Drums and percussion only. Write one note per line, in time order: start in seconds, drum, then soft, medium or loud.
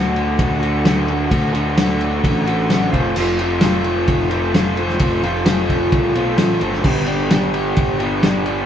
0.16 ride medium
0.39 kick loud
0.39 ride loud
0.63 ride medium
0.85 snare loud
0.85 ride medium
1.08 ride medium
1.31 kick loud
1.31 ride loud
1.55 ride medium
1.77 snare loud
1.77 ride loud
2.01 ride medium
2.24 kick loud
2.24 ride medium
2.47 ride medium
2.70 snare loud
2.70 ride medium
2.93 kick medium
2.93 ride medium
3.16 crash medium
3.39 ride medium
3.61 snare loud
3.61 ride loud
3.84 ride medium
4.08 kick loud
4.08 ride medium
4.31 ride medium
4.54 snare loud
4.54 ride medium
4.77 ride medium
4.89 snare soft
4.99 kick loud
4.99 ride loud
5.23 ride medium
5.46 snare loud
5.46 ride loud
5.70 kick medium
5.70 ride medium
5.92 kick loud
5.92 ride medium
6.15 ride medium
6.38 snare medium
6.38 ride loud
6.61 ride medium
6.73 snare soft
6.84 kick loud
6.84 crash loud
7.06 ride medium
7.31 snare loud
7.31 ride loud
7.54 ride medium
7.76 kick loud
7.76 ride loud
8.00 ride medium
8.23 snare loud
8.23 ride medium
8.46 ride medium